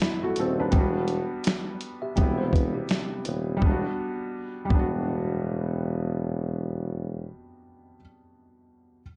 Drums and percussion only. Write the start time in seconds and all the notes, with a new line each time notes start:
0.00 finger snap, snare, closed hi-hat
0.36 closed hi-hat
0.72 kick, closed hi-hat
1.08 closed hi-hat
1.44 finger snap, snare, closed hi-hat
1.81 closed hi-hat
2.17 kick, closed hi-hat
2.53 kick, closed hi-hat
2.89 finger snap, snare, closed hi-hat
3.25 closed hi-hat
3.62 kick
4.70 kick